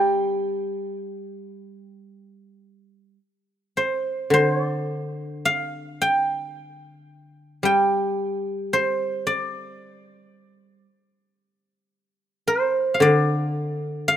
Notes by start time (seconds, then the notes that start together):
Already playing: G3 F5 G5 A#5 C6
3.77 C5
4.30 D3 C5
4.54 C#5
4.66 D5
5.45 F5
6.02 G5
7.63 G3 G5
8.73 C5
9.27 D5
12.48 C5
12.94 F5
13.00 D3 D5
14.08 F5